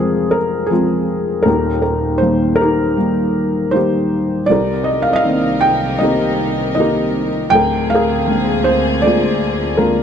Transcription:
Already playing: F1 F2 F3 G#3 C4 F4 G#4 A#4 C5 D5
0.31 A#4
0.67 F3 G#3 G#4
0.71 C4 F4
1.43 D#1 D#2 A#4
1.48 D#4 G4
1.82 A#4
2.18 D#3 G3 C5
2.22 A#3
2.56 A#4
2.61 D#4 G4
2.97 D#3 G3 A#3
3.71 D#3 G3 A#3 C5
3.76 D#4 G4
4.46 C2 C3 D#4 A#4 D5
4.51 G4 A#4
4.84 D#5
5.02 F5
5.13 D#5 F5
5.24 D#3 A#3 C4
5.61 G5
5.99 D#3 A#3 C4 D#5
6.03 G4 A#4
6.75 D#3 A#3 C4 D#5
6.80 G4 A#4
7.50 D1 D2 D3 C4 G#4 G5
7.55 A#4
7.90 F5
7.94 G#4 A#4
8.27 D3 G#3 A#3
8.64 C5
9.02 D3 G#3 A#3 D5
9.06 F4 G#4
9.77 D3 G#3 A#3 A#4
9.82 F4

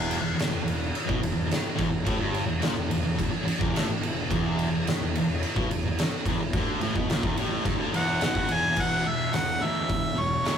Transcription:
Already playing: E1 E2
0.11 ride
0.21 E1 E2
0.35 muted distorted electric guitar stroke, muted fingered electric bass stroke
0.39 snare, ride
0.48 E1 E2
0.62 E1 E2
0.68 ride
0.95 ride
1.07 B1 B2, kick
1.20 E1 E2, ride
1.32 E2
1.37 E1
1.47 muted distorted electric guitar stroke
1.51 muted fingered electric bass stroke, snare, ride
1.76 E1 E2, kick, ride
1.90 E1 E2
2.04 A1 A2, kick, ride
2.19 G1 G2
2.34 ride
2.46 E1 E2
2.61 A#1 A#2, snare, ride
2.74 E1 E2
2.89 E1 E2, ride
3.03 E1 E2
3.16 E1 E2, kick, ride
3.29 muted fingered electric bass stroke, muted distorted electric guitar stroke
3.43 muted fingered electric bass stroke, muted distorted electric guitar stroke
3.48 ride
3.59 E1 E2, kick
3.70 A1 A2
3.76 snare, ride
3.84 muted fingered electric bass stroke
3.88 muted distorted electric guitar stroke
3.99 E1 E2, ride
4.30 E1 E2, kick, ride
4.59 ride
4.71 E1 E2
4.86 muted fingered electric bass stroke, muted distorted electric guitar stroke, snare, ride
5.01 E1 E2
5.14 E1 E2, ride
5.43 ride
5.55 B1 B2, kick
5.69 E1 E2, ride
5.81 E1 E2
5.95 muted fingered electric bass stroke, ride
6.00 muted distorted electric guitar stroke, snare
6.25 E1 E2, kick, ride
6.38 E1
6.42 E2
6.53 D2 D3, kick, ride
6.80 A1 A2, ride
6.96 B1 B2, kick
7.06 A#1 A#2, ride
7.11 snare
7.23 E1 E2, kick
7.35 A1 A2, ride
7.65 G1 G2, kick, ride
7.77 D2 D3
7.91 E1 E2, ride
7.96 F#5
8.20 B1 B2, snare, ride
8.25 F#5
8.35 G1 G2, kick
8.48 E1 E2, ride
8.53 G#5
8.76 E1 E2 B2 E3, kick, crash
8.82 F#5
9.04 E1 E2 B2
9.08 E5
9.33 E1 E2 B2 F#5, snare, open hi-hat
9.60 D2 E2 B2 E3 E5
9.88 E1 E2 B2, kick, open hi-hat
10.14 E1 E2 B2
10.20 C#5
10.43 D2 E2 B2 E3, snare, open hi-hat

